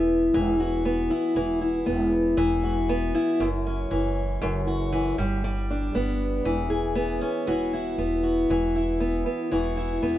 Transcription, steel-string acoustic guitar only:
0.00 0.34 E3 medium
0.00 0.84 B3 medium
0.00 1.10 E4 medium
0.34 1.36 E3 medium
0.60 2.63 F#4 medium
0.85 1.85 B3 medium
1.10 1.61 E4 medium
1.36 2.37 E3 medium
1.61 3.14 E4 medium
1.86 2.88 B3 medium
2.37 3.44 E3 medium
2.63 3.45 F#4 medium
2.89 3.45 B3 medium
3.15 3.45 E4 medium
3.40 4.40 F#2 medium
3.67 5.24 C#4 medium
3.91 4.91 E3 medium
4.41 5.23 F#2 medium
4.67 5.23 F#4 medium
4.93 5.18 E3 medium
5.18 5.43 G3 medium
5.44 6.45 G3 medium
5.71 6.51 D4 medium
5.95 6.95 B3 medium
6.45 7.47 E3 medium
6.70 7.48 G#4 medium
6.95 7.98 B3 medium
7.21 7.52 C#4 medium
7.47 8.50 E3 medium
7.47 8.23 F#4 medium
7.73 8.75 E4 medium
7.98 8.99 B3 medium
8.23 9.52 F#4 medium
8.50 9.51 E3 medium
8.76 9.77 E4 medium
9.00 9.25 B3 medium
9.26 10.01 B3 medium
9.52 10.18 E3 medium
9.52 10.18 F#4 medium
9.77 10.18 E4 medium
10.03 10.18 B3 medium

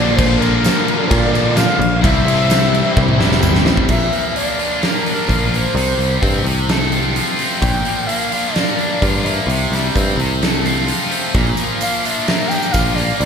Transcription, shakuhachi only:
0.00 0.18 D5 loud
0.16 0.40 C5 medium
0.39 1.10 A#4 loud
1.08 1.58 D5 loud
1.57 2.03 F5 loud
2.04 3.62 E5 loud
3.90 4.38 E5 loud
4.37 4.87 D5 medium
4.86 5.58 A#4 medium
5.56 6.47 C5 medium
7.60 8.08 G5 loud
8.07 8.58 F5 medium
8.56 9.26 D5 loud
9.24 10.18 E5 medium
11.81 12.07 F5 loud
12.05 12.50 E5 loud
12.49 12.74 G5 loud
12.72 12.97 F5 loud
12.95 13.19 D5 medium
13.19 13.25 D5 loud

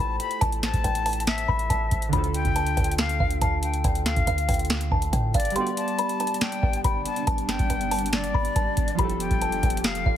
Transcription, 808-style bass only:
0.00 0.19 A1 loud
0.42 0.72 A1 loud
0.74 0.84 A1 loud
0.84 1.46 A1 loud
1.49 1.69 A1 loud
1.70 1.91 A1 loud
1.91 2.12 A1 loud
2.13 2.44 D2 loud
2.45 2.76 D2 loud
2.77 3.18 D2 loud
3.20 3.41 D2 loud
3.41 3.83 D2 loud
3.84 4.15 D2 loud
4.17 4.27 D2 loud
4.27 4.48 D2 loud
4.49 4.90 D2 loud
4.91 5.12 D2 loud
5.13 5.33 A2 loud
5.34 5.56 G1 loud
6.63 6.83 G1 loud
6.84 7.05 G1 loud
7.27 7.58 G1 loud
7.59 7.70 G1 loud
7.70 8.32 G1 loud
8.34 8.55 G1 loud
8.56 8.76 G1 loud
8.77 8.98 G1 loud
8.99 9.29 F1 loud
9.31 9.62 F1 loud
9.63 10.04 F1 loud
10.06 10.17 F1 loud

